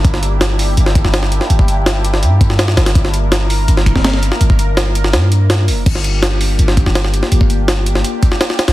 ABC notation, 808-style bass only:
X:1
M:4/4
L:1/16
Q:1/4=165
K:Gdor
V:1 name="808-style bass" clef=bass
G,,,8 G,,,3 G,,,4 z | G,,,8 G,,6 G,,,2 | G,,,8 G,,,3 G,,,4 z | G,,,8 G,,6 F,,,2 |
G,,,8 G,,,3 G,,,4 z | G,,,8 z6 z D,,, |]